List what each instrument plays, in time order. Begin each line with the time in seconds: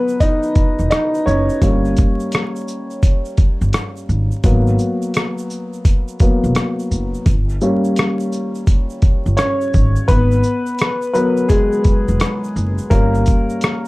Already playing: upright piano F#3 B3 A#4 B4
0.08 shaker
0.20 upright piano D#4 D#5, kick, closed hi-hat, shaker
0.43 shaker
0.55 kick, closed hi-hat, shaker
0.79 upright bass E1, shaker
0.90 upright piano D#4 D#5, cross-stick, closed hi-hat, shaker
1.14 shaker
1.26 upright bass F#1, upright piano C#4 C#5, shaker
1.49 shaker
1.62 upright bass G1, upright piano G3 A#3 C#4, kick, closed hi-hat, shaker
1.85 shaker
1.97 kick, closed hi-hat, shaker
2.20 shaker
2.32 cross-stick, closed hi-hat, shaker
2.56 shaker
2.68 shaker
2.91 shaker
3.03 kick, closed hi-hat, shaker
3.25 shaker
3.37 kick, closed hi-hat, shaker
3.61 upright bass G1, shaker
3.73 cross-stick, closed hi-hat, shaker
3.97 shaker
4.09 upright bass G#1, shaker
4.31 shaker
4.44 upright bass G#1, upright piano F#3 A#3 B3, kick, closed hi-hat, shaker
4.67 shaker
4.79 shaker
5.02 shaker
5.14 cross-stick, closed hi-hat, shaker
5.38 shaker
5.50 shaker
5.73 shaker
5.85 kick, closed hi-hat, shaker
6.08 shaker
6.20 upright piano F#3 A#3 B3, kick, closed hi-hat, shaker
6.44 upright bass E1, shaker
6.55 cross-stick, closed hi-hat, shaker
6.79 shaker
6.91 upright bass F#1, shaker
7.14 shaker
7.26 upright bass G1, kick, closed hi-hat, shaker
7.49 shaker
7.61 upright piano G3 A#3 C#4, shaker
7.84 shaker
7.96 cross-stick, closed hi-hat, shaker
8.20 shaker
8.32 shaker
8.55 shaker
8.67 kick, closed hi-hat, shaker
8.90 shaker
9.02 kick, closed hi-hat, shaker
9.26 upright bass G1, shaker
9.37 upright piano C#4 C#5, cross-stick, closed hi-hat, shaker
9.61 shaker
9.74 upright bass G#1, kick, shaker
9.96 shaker
10.08 upright bass G#1, upright piano B3 B4, kick, closed hi-hat, shaker
10.31 shaker
10.43 shaker
10.66 shaker
10.78 cross-stick, closed hi-hat, shaker
11.02 shaker
11.13 upright piano F#3 B3 A#4 B4, shaker
11.37 shaker
11.49 upright piano G#3 G#4, kick, closed hi-hat, shaker
11.72 shaker
11.84 kick, closed hi-hat, shaker
12.08 upright bass E1, shaker
12.20 cross-stick, closed hi-hat, shaker
12.44 shaker
12.56 upright bass F#1, shaker
12.78 shaker
12.90 upright bass G1, upright piano G3 A#3 C#4 A#4, kick, closed hi-hat, shaker
13.15 shaker
13.26 kick, closed hi-hat, shaker
13.50 shaker
13.61 cross-stick, closed hi-hat, shaker